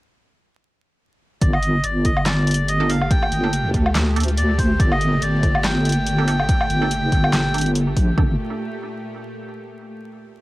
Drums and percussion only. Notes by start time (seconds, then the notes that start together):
1.42 kick, closed hi-hat
1.53 low woodblock
1.63 closed hi-hat
1.84 closed hi-hat
2.05 kick, closed hi-hat
2.17 low woodblock
2.26 snare, clap, closed hi-hat
2.47 closed hi-hat
2.51 closed hi-hat
2.54 closed hi-hat
2.68 closed hi-hat
2.90 open hi-hat
3.02 low woodblock
3.11 kick, closed hi-hat
3.23 low woodblock
3.32 closed hi-hat
3.53 closed hi-hat
3.74 kick, closed hi-hat
3.86 low woodblock
3.95 snare, clap, closed hi-hat
4.16 closed hi-hat
4.20 closed hi-hat
4.24 closed hi-hat
4.28 closed hi-hat
4.38 closed hi-hat
4.59 kick, open hi-hat
4.80 kick, closed hi-hat
4.92 low woodblock
5.01 closed hi-hat
5.22 closed hi-hat
5.43 kick, closed hi-hat
5.55 low woodblock
5.64 snare, clap, closed hi-hat
5.85 closed hi-hat
5.89 closed hi-hat
5.92 closed hi-hat
6.06 closed hi-hat
6.28 open hi-hat
6.39 low woodblock
6.49 kick, closed hi-hat
6.61 low woodblock
6.70 closed hi-hat
6.91 closed hi-hat
7.12 kick, closed hi-hat
7.24 low woodblock
7.33 snare, clap, closed hi-hat
7.54 closed hi-hat
7.58 closed hi-hat
7.61 closed hi-hat
7.66 closed hi-hat
7.75 closed hi-hat
7.97 kick, open hi-hat
8.18 kick